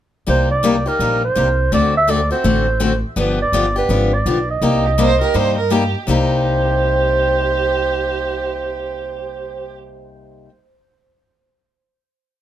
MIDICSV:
0, 0, Header, 1, 5, 480
1, 0, Start_track
1, 0, Key_signature, -3, "minor"
1, 0, Tempo, 363196
1, 359, Time_signature, 4, 2, 24, 8
1, 16402, End_track
2, 0, Start_track
2, 0, Title_t, "Clarinet"
2, 0, Program_c, 0, 71
2, 387, Note_on_c, 0, 72, 85
2, 653, Note_off_c, 0, 72, 0
2, 678, Note_on_c, 0, 74, 87
2, 1162, Note_on_c, 0, 70, 74
2, 1182, Note_off_c, 0, 74, 0
2, 1629, Note_off_c, 0, 70, 0
2, 1643, Note_on_c, 0, 72, 84
2, 2242, Note_off_c, 0, 72, 0
2, 2298, Note_on_c, 0, 74, 85
2, 2566, Note_off_c, 0, 74, 0
2, 2604, Note_on_c, 0, 76, 87
2, 2776, Note_on_c, 0, 74, 88
2, 2796, Note_off_c, 0, 76, 0
2, 3052, Note_off_c, 0, 74, 0
2, 3060, Note_on_c, 0, 72, 82
2, 3961, Note_off_c, 0, 72, 0
2, 4220, Note_on_c, 0, 71, 74
2, 4485, Note_off_c, 0, 71, 0
2, 4516, Note_on_c, 0, 74, 85
2, 4950, Note_off_c, 0, 74, 0
2, 4994, Note_on_c, 0, 71, 77
2, 5470, Note_on_c, 0, 74, 80
2, 5490, Note_off_c, 0, 71, 0
2, 5940, Note_off_c, 0, 74, 0
2, 5955, Note_on_c, 0, 75, 78
2, 7510, Note_off_c, 0, 75, 0
2, 8047, Note_on_c, 0, 72, 83
2, 12889, Note_off_c, 0, 72, 0
2, 16402, End_track
3, 0, Start_track
3, 0, Title_t, "Violin"
3, 0, Program_c, 1, 40
3, 6418, Note_on_c, 1, 67, 61
3, 6497, Note_off_c, 1, 67, 0
3, 6595, Note_on_c, 1, 72, 95
3, 6872, Note_off_c, 1, 72, 0
3, 6882, Note_on_c, 1, 70, 86
3, 7078, Note_on_c, 1, 72, 83
3, 7098, Note_off_c, 1, 70, 0
3, 7365, Note_off_c, 1, 72, 0
3, 7373, Note_on_c, 1, 70, 69
3, 7551, Note_on_c, 1, 67, 68
3, 7571, Note_off_c, 1, 70, 0
3, 8023, Note_off_c, 1, 67, 0
3, 8031, Note_on_c, 1, 67, 60
3, 12881, Note_off_c, 1, 67, 0
3, 16402, End_track
4, 0, Start_track
4, 0, Title_t, "Steel-string acoustic guitar"
4, 0, Program_c, 2, 25
4, 351, Note_on_c, 2, 48, 59
4, 358, Note_on_c, 2, 55, 67
4, 363, Note_on_c, 2, 58, 61
4, 365, Note_on_c, 2, 63, 65
4, 370, Note_on_c, 2, 67, 63
4, 635, Note_off_c, 2, 48, 0
4, 639, Note_off_c, 2, 55, 0
4, 641, Note_off_c, 2, 58, 0
4, 643, Note_off_c, 2, 63, 0
4, 645, Note_off_c, 2, 67, 0
4, 830, Note_on_c, 2, 48, 66
4, 841, Note_on_c, 2, 58, 83
4, 842, Note_on_c, 2, 55, 78
4, 846, Note_on_c, 2, 63, 75
4, 852, Note_on_c, 2, 67, 88
4, 982, Note_off_c, 2, 48, 0
4, 988, Note_off_c, 2, 55, 0
4, 988, Note_off_c, 2, 58, 0
4, 990, Note_off_c, 2, 63, 0
4, 993, Note_off_c, 2, 67, 0
4, 1133, Note_on_c, 2, 67, 44
4, 1153, Note_on_c, 2, 63, 41
4, 1168, Note_on_c, 2, 58, 37
4, 1307, Note_off_c, 2, 67, 0
4, 1315, Note_off_c, 2, 58, 0
4, 1317, Note_off_c, 2, 63, 0
4, 1324, Note_on_c, 2, 48, 56
4, 1326, Note_on_c, 2, 55, 62
4, 1331, Note_on_c, 2, 58, 67
4, 1336, Note_on_c, 2, 63, 63
4, 1339, Note_on_c, 2, 67, 59
4, 1601, Note_off_c, 2, 48, 0
4, 1602, Note_off_c, 2, 55, 0
4, 1604, Note_off_c, 2, 58, 0
4, 1607, Note_off_c, 2, 63, 0
4, 1608, Note_off_c, 2, 67, 0
4, 1791, Note_on_c, 2, 48, 75
4, 1800, Note_on_c, 2, 55, 60
4, 1808, Note_on_c, 2, 58, 67
4, 1808, Note_on_c, 2, 63, 68
4, 1812, Note_on_c, 2, 67, 74
4, 1941, Note_off_c, 2, 48, 0
4, 1946, Note_off_c, 2, 55, 0
4, 1950, Note_off_c, 2, 58, 0
4, 1950, Note_off_c, 2, 63, 0
4, 1952, Note_off_c, 2, 67, 0
4, 2273, Note_on_c, 2, 50, 58
4, 2278, Note_on_c, 2, 57, 67
4, 2283, Note_on_c, 2, 60, 63
4, 2284, Note_on_c, 2, 66, 64
4, 2292, Note_on_c, 2, 69, 65
4, 2554, Note_off_c, 2, 50, 0
4, 2556, Note_off_c, 2, 57, 0
4, 2559, Note_off_c, 2, 60, 0
4, 2560, Note_off_c, 2, 66, 0
4, 2564, Note_off_c, 2, 69, 0
4, 2742, Note_on_c, 2, 50, 69
4, 2749, Note_on_c, 2, 57, 69
4, 2755, Note_on_c, 2, 60, 69
4, 2757, Note_on_c, 2, 66, 73
4, 2760, Note_on_c, 2, 69, 77
4, 2896, Note_off_c, 2, 50, 0
4, 2899, Note_off_c, 2, 57, 0
4, 2902, Note_off_c, 2, 60, 0
4, 2904, Note_off_c, 2, 66, 0
4, 2905, Note_off_c, 2, 69, 0
4, 3048, Note_on_c, 2, 69, 51
4, 3062, Note_on_c, 2, 66, 38
4, 3072, Note_on_c, 2, 60, 41
4, 3218, Note_off_c, 2, 60, 0
4, 3222, Note_off_c, 2, 69, 0
4, 3224, Note_off_c, 2, 66, 0
4, 3228, Note_on_c, 2, 50, 66
4, 3232, Note_on_c, 2, 57, 67
4, 3234, Note_on_c, 2, 60, 60
4, 3239, Note_on_c, 2, 69, 70
4, 3240, Note_on_c, 2, 66, 66
4, 3510, Note_off_c, 2, 50, 0
4, 3512, Note_off_c, 2, 57, 0
4, 3514, Note_off_c, 2, 60, 0
4, 3516, Note_off_c, 2, 66, 0
4, 3516, Note_off_c, 2, 69, 0
4, 3698, Note_on_c, 2, 50, 70
4, 3704, Note_on_c, 2, 57, 73
4, 3704, Note_on_c, 2, 60, 79
4, 3714, Note_on_c, 2, 66, 78
4, 3716, Note_on_c, 2, 69, 77
4, 3853, Note_off_c, 2, 50, 0
4, 3856, Note_off_c, 2, 57, 0
4, 3856, Note_off_c, 2, 60, 0
4, 3861, Note_off_c, 2, 66, 0
4, 3862, Note_off_c, 2, 69, 0
4, 4177, Note_on_c, 2, 50, 61
4, 4184, Note_on_c, 2, 53, 59
4, 4186, Note_on_c, 2, 59, 66
4, 4193, Note_on_c, 2, 62, 70
4, 4200, Note_on_c, 2, 67, 70
4, 4464, Note_off_c, 2, 50, 0
4, 4468, Note_off_c, 2, 53, 0
4, 4469, Note_off_c, 2, 59, 0
4, 4472, Note_off_c, 2, 62, 0
4, 4476, Note_off_c, 2, 67, 0
4, 4666, Note_on_c, 2, 50, 74
4, 4674, Note_on_c, 2, 53, 71
4, 4677, Note_on_c, 2, 59, 81
4, 4682, Note_on_c, 2, 62, 86
4, 4684, Note_on_c, 2, 67, 79
4, 4817, Note_off_c, 2, 50, 0
4, 4820, Note_off_c, 2, 53, 0
4, 4822, Note_off_c, 2, 59, 0
4, 4824, Note_off_c, 2, 62, 0
4, 4825, Note_off_c, 2, 67, 0
4, 4966, Note_on_c, 2, 67, 50
4, 4987, Note_on_c, 2, 62, 48
4, 5001, Note_on_c, 2, 59, 40
4, 5137, Note_off_c, 2, 59, 0
4, 5140, Note_off_c, 2, 67, 0
4, 5142, Note_on_c, 2, 50, 55
4, 5145, Note_off_c, 2, 62, 0
4, 5152, Note_on_c, 2, 53, 62
4, 5153, Note_on_c, 2, 59, 58
4, 5160, Note_on_c, 2, 62, 59
4, 5161, Note_on_c, 2, 67, 67
4, 5426, Note_off_c, 2, 50, 0
4, 5432, Note_off_c, 2, 53, 0
4, 5432, Note_off_c, 2, 59, 0
4, 5436, Note_off_c, 2, 62, 0
4, 5436, Note_off_c, 2, 67, 0
4, 5629, Note_on_c, 2, 50, 66
4, 5633, Note_on_c, 2, 53, 68
4, 5635, Note_on_c, 2, 59, 68
4, 5642, Note_on_c, 2, 62, 69
4, 5646, Note_on_c, 2, 67, 70
4, 5778, Note_off_c, 2, 50, 0
4, 5780, Note_off_c, 2, 53, 0
4, 5781, Note_off_c, 2, 59, 0
4, 5784, Note_off_c, 2, 62, 0
4, 5786, Note_off_c, 2, 67, 0
4, 6101, Note_on_c, 2, 48, 57
4, 6107, Note_on_c, 2, 55, 61
4, 6111, Note_on_c, 2, 58, 75
4, 6115, Note_on_c, 2, 63, 65
4, 6118, Note_on_c, 2, 67, 69
4, 6386, Note_off_c, 2, 48, 0
4, 6389, Note_off_c, 2, 55, 0
4, 6391, Note_off_c, 2, 58, 0
4, 6393, Note_off_c, 2, 63, 0
4, 6395, Note_off_c, 2, 67, 0
4, 6579, Note_on_c, 2, 48, 74
4, 6583, Note_on_c, 2, 55, 81
4, 6591, Note_on_c, 2, 58, 84
4, 6593, Note_on_c, 2, 63, 85
4, 6595, Note_on_c, 2, 67, 88
4, 6733, Note_off_c, 2, 48, 0
4, 6735, Note_off_c, 2, 55, 0
4, 6739, Note_off_c, 2, 58, 0
4, 6740, Note_off_c, 2, 63, 0
4, 6741, Note_off_c, 2, 67, 0
4, 6889, Note_on_c, 2, 67, 45
4, 6907, Note_on_c, 2, 63, 42
4, 6922, Note_on_c, 2, 58, 41
4, 7052, Note_off_c, 2, 58, 0
4, 7055, Note_off_c, 2, 63, 0
4, 7057, Note_on_c, 2, 48, 58
4, 7062, Note_off_c, 2, 67, 0
4, 7063, Note_on_c, 2, 55, 59
4, 7068, Note_on_c, 2, 58, 55
4, 7071, Note_on_c, 2, 63, 53
4, 7077, Note_on_c, 2, 67, 64
4, 7345, Note_off_c, 2, 48, 0
4, 7347, Note_off_c, 2, 55, 0
4, 7350, Note_off_c, 2, 58, 0
4, 7351, Note_off_c, 2, 63, 0
4, 7355, Note_off_c, 2, 67, 0
4, 7537, Note_on_c, 2, 48, 64
4, 7541, Note_on_c, 2, 55, 69
4, 7548, Note_on_c, 2, 58, 67
4, 7554, Note_on_c, 2, 63, 70
4, 7560, Note_on_c, 2, 67, 79
4, 7692, Note_off_c, 2, 48, 0
4, 7694, Note_off_c, 2, 55, 0
4, 7698, Note_off_c, 2, 58, 0
4, 7701, Note_off_c, 2, 63, 0
4, 7704, Note_off_c, 2, 67, 0
4, 8019, Note_on_c, 2, 48, 67
4, 8034, Note_on_c, 2, 55, 77
4, 8045, Note_on_c, 2, 58, 81
4, 8051, Note_on_c, 2, 63, 79
4, 8066, Note_on_c, 2, 67, 80
4, 13853, Note_off_c, 2, 48, 0
4, 13861, Note_off_c, 2, 55, 0
4, 13866, Note_off_c, 2, 58, 0
4, 13869, Note_off_c, 2, 63, 0
4, 13877, Note_off_c, 2, 67, 0
4, 16402, End_track
5, 0, Start_track
5, 0, Title_t, "Upright bass"
5, 0, Program_c, 3, 32
5, 364, Note_on_c, 3, 36, 68
5, 1128, Note_off_c, 3, 36, 0
5, 1315, Note_on_c, 3, 34, 71
5, 1722, Note_off_c, 3, 34, 0
5, 1801, Note_on_c, 3, 36, 70
5, 2205, Note_off_c, 3, 36, 0
5, 2271, Note_on_c, 3, 38, 80
5, 3038, Note_off_c, 3, 38, 0
5, 3226, Note_on_c, 3, 33, 75
5, 3995, Note_off_c, 3, 33, 0
5, 4179, Note_on_c, 3, 31, 69
5, 4567, Note_off_c, 3, 31, 0
5, 4655, Note_on_c, 3, 31, 63
5, 5069, Note_off_c, 3, 31, 0
5, 5139, Note_on_c, 3, 32, 71
5, 5551, Note_off_c, 3, 32, 0
5, 5625, Note_on_c, 3, 35, 67
5, 6034, Note_off_c, 3, 35, 0
5, 6099, Note_on_c, 3, 36, 74
5, 6871, Note_off_c, 3, 36, 0
5, 7065, Note_on_c, 3, 43, 68
5, 7836, Note_off_c, 3, 43, 0
5, 8033, Note_on_c, 3, 36, 74
5, 13807, Note_off_c, 3, 36, 0
5, 16402, End_track
0, 0, End_of_file